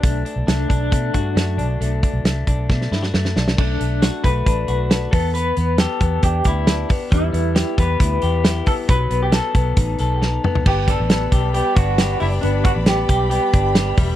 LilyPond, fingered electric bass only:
\new Staff \with { instrumentName = "Fingered electric bass" } { \clef bass \time 4/4 \key g \major \tempo 4 = 136 b,,8 r16 b,,16 c,8 b,,8 b,8 g,8 fis,8 b,,8 | b,,8 r16 b,,16 c,8 b,,8 b,8 g,8 fis,8 b,,8 | b,,8 b,,8. r16 b,,8 a,,8 b,,4 e,8~ | e,8 e,8. r16 e,8 e,8 d,4 r8 |
e,8 e,8. r16 e,8 d,8 e,4 r8 | b,,8 b,,8. r16 b,,8 a,,8 b,,4 r8 | g,,8. a,,8. b,,8. r16 g,,4 fis,,8 | g,,8. a,,8. b,,8. r16 g,,4 e,,8 | }